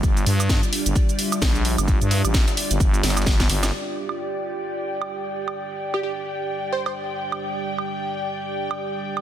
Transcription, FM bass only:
X:1
M:4/4
L:1/16
Q:"Swing 16ths" 1/4=130
K:Cmix
V:1 name="FM bass" clef=bass
G,,,2 G,,3 z2 G,,, z4 B,,,3 G,,,- | G,,, G,,2 A,,,2 z2 G,,, G,,,2 G,,,2 G,,,2 G,,,2 | z16 | z16 |
z16 |]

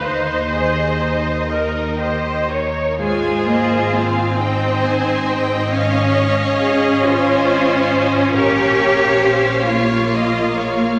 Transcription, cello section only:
X:1
M:6/8
L:1/8
Q:3/8=45
K:Ab
V:1 name="Cello section"
E,6 | F3 E3 | D2 A F3 | G3 F3 |]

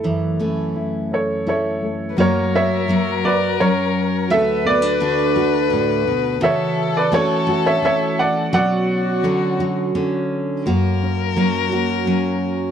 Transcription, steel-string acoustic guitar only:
X:1
M:3/4
L:1/8
Q:1/4=85
K:F#phr
V:1 name="Steel-string acoustic guitar"
[E,A,C] [E,A,C]3 A,2 | ^A,2 [A,F]2 C2 | A,2 [A,DF] A, D2 | E,2 [A,CF] A,3 |
F,2 [F,C] F, C2 | ^A,2 [A,CF] A, C2 |]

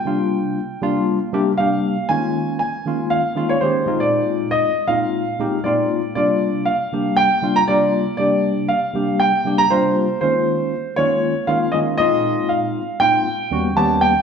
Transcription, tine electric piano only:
X:1
M:4/4
L:1/8
Q:"Swing 16ths" 1/4=118
K:Cm
V:1 name="Tine electric piano"
[C,G,B,DF]2 z [C,G,B,DF] z [C,G,B,DG] [C,G,B,DG] z | [E,A,B,_DF]2 z [E,A,B,DF] z [E,A,B,DF] [E,A,B,DG] [B,,A,CEF]- | [B,,A,CEF]2 z [B,,A,CEF] z [B,,A,CEG] [B,,A,CEF] z | [C,G,B,DF]2 z [C,G,B,DG] z [C,G,B,DF] [C,G,B,DF] z |
[C,G,B,DG]2 z [C,G,B,DG] z [C,G,B,DG] [C,G,B,DF] z | [E,A,B,_DF]2 z [E,A,B,DF] z [E,A,B,DF] [E,A,B,DF] [B,,A,CEF]- | [B,,A,CEF]2 z [B,,A,CEF] z [E,,G,=B,_D^F] [E,,G,B,DG] z |]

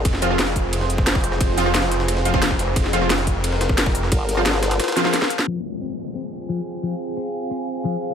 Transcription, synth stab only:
X:1
M:4/4
L:1/16
Q:1/4=177
K:Fm
V:1 name="Synth stab"
z2 [F,CF] [F,CF] z12 | z2 [F,CF] [F,CF] z6 [F,CF] [F,CF]2 z3 | z2 [F,CF] [F,CF] z12 | z3 [F,CF] z6 [F,CF] [F,CF] z4 |
z16 | z16 |]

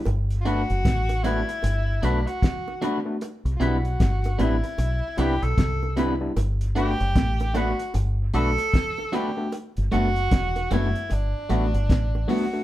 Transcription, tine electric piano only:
X:1
M:4/4
L:1/16
Q:"Swing 16ths" 1/4=76
K:G
V:1 name="Tine electric piano"
z2 [A,B,DF] z3 [A,B,DF] z3 [A,B,DF] z3 [A,B,DF] [A,B,DF] | z2 [G,B,DE] z3 [G,B,DE] z3 [G,B,DE] z3 [G,B,DE] [G,B,DE] | z2 [A,B,DF] z3 [A,B,DF] z3 [A,B,DF] z3 [A,B,DF] [A,B,DF] | z2 [A,B,DF] z3 [A,B,DF] z3 [A,B,DF] z3 [A,B,DF] [A,B,DF] |]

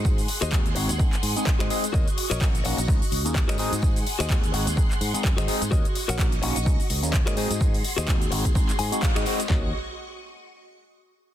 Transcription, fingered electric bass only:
X:1
M:4/4
L:1/16
Q:"Swing 16ths" 1/4=127
K:Ebdor
V:1 name="Fingered electric bass" clef=bass
A,,2 z E,,3 A,,, E,, z2 A,, z2 A,, z2 | E,, z2 B,,,3 B,,, B,,, D,, z D,, E,,2 A,,2 A,,- | A,,2 z E,,3 A,,, E,, z2 A,, z G,, A,,, z A,, | E,, z2 B,,,3 B,,, B,,, D,, z D,, E,,2 A,,2 A,,- |
A,,2 z E,,3 A,,, E,, z2 A,, z2 A,, z2 | E,,2 z12 z2 |]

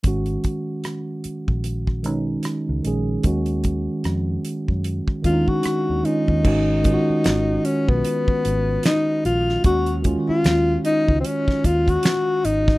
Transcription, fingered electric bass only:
X:1
M:4/4
L:1/16
Q:"Swing 16ths" 1/4=75
K:Abdor
V:1 name="Fingered electric bass" clef=bass
A,,,2 z4 z B,,,3 C,,2 z D,, B,,,2 | E,,4 F,,2 z G,,2 z E,, E, z E,, z E,, | A,,,3 z A,,,2 z C,, z2 A,,,2 z2 B,,,2 | E,,3 z E,,2 z D,, z2 E,,2 z2 A,,,2 |]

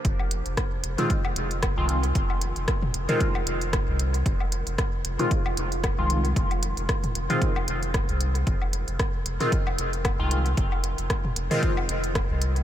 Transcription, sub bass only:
X:1
M:4/4
L:1/16
Q:"Swing 16ths" 1/4=114
K:Fm
V:1 name="Sub bass" clef=bass
F,,,3 F,,, z2 F,,, z3 F,,,3 C,,3 | F,,,3 F,,, z2 F,,, z3 F,,,3 C,,3 | F,,,3 F,,, z2 F,,, z3 F,,,3 C,,3 | F,,,3 F,,, z2 F,,, z3 F,,,3 C,,3 |
F,,,3 F,,, z2 F,,, z3 F,,,3 C,,3 | F,,,3 F,,, z2 F,,, z3 F,,,3 C,,3 |]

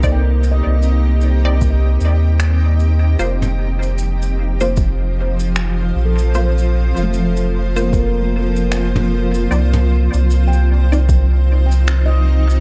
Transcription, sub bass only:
X:1
M:4/4
L:1/16
Q:"Swing 16ths" 1/4=76
K:Fmix
V:1 name="Sub bass" clef=bass
C,,3 C,,6- C,, E,,6 | F,,,12- F,,,2 B,,,2- | B,,,3 F,,,12- F,,, | C,,3 C,,12- C,, |]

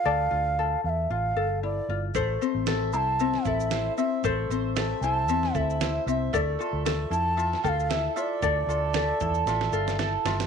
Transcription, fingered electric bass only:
X:1
M:4/4
L:1/16
Q:"Swing 16ths" 1/4=115
K:Dm
V:1 name="Fingered electric bass" clef=bass
D,,2 D,,4 E,,2 A,,,2 G,,,4 G,,,2 | A,,,2 z A,,,3 C,,4 A,,,4 z2 | A,,,2 A,,,4 C,,2 E,,2 D,,4 C,,2 | D,,2 z D,,3 F,,4 D,,4 z2 |
D,,2 D,,4 E,,2 A,,,2 G,,,4 G,,,2 |]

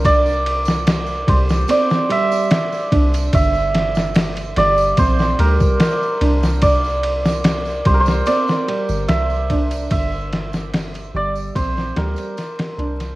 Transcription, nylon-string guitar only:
X:1
M:4/4
L:1/8
Q:1/4=73
K:Gdor
V:1 name="Nylon-string guitar"
z3 G, C G, z D | z3 G, C G, z D | z3 G, C G, z D | z3 G, C G, z D |]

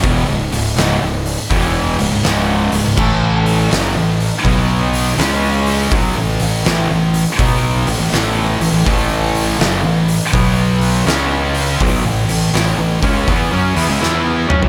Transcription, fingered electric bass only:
X:1
M:4/4
L:1/16
Q:"Swing" 1/4=82
K:Alyd
V:1 name="Fingered electric bass" clef=bass
E,,, C,,, C,,,2 C,,, C,,,2 z E,,,2 C,,, C,,, C,,,2 C,,, C,,, | A,,,4 F,,, A,,,2 z B,,,4 C,,4 | B,,, A,,, A,,,2 A,,, A,,,2 z B,,,2 A,,, A,,, A,,,2 A,,, A,,, | A,,,4 F,,, A,,,2 z B,,,4 C,,4 |
B,,, A,,, A,,,2 A,,, A,,, C,,2 E,, F,, E,, C,, E,,2 F,, B,,, |]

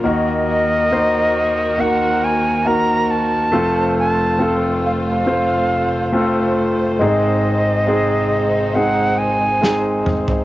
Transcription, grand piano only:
X:1
M:4/4
L:1/8
Q:1/4=69
K:Ebdor
V:1 name="Grand piano"
[B,EGB]2 [B,EGc]2 [B,EGB]2 [B,EGB]2 | [=A,CF=A]2 [A,CFA]2 [A,CFc]2 [A,CFA]2 | [A,CEA]2 [A,CEA]2 [A,CEA]2 [A,CEA]2 |]
V:2 name="Grand piano" clef=bass
[E,,E,]8 | [F,,,F,,]8 | [A,,,A,,]8 |]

